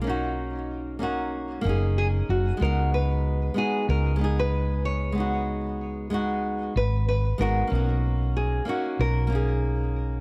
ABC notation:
X:1
M:4/4
L:1/16
Q:"Swing 16ths" 1/4=94
K:B
V:1 name="Nylon-string guitar"
D6 z6 G2 F2 | A2 B4 G2 A3 B3 c2- | c8- c2 B2 B2 A2- | A4 G2 F2 A8 |]
V:2 name="Nylon-string guitar"
[A,CDF]6 [A,CDF]4 [A,CDG]6 | [G,B,DF]6 [G,B,DF]4 [G,B,DG]6 | [G,B,DF]6 [G,B,DF]4 z4 [G,B,DF]2 | [A,CDF]6 [A,CDF]4 [A,CDG]6 |]
V:3 name="Fretless electric bass" clef=bass
B,,,8- B,,,2 F,,,4 F,,,2 | C,,6 z2 C,,8- | C,,8- C,,2 G,,,4 G,,,2 | B,,,6 z2 B,,,8 |]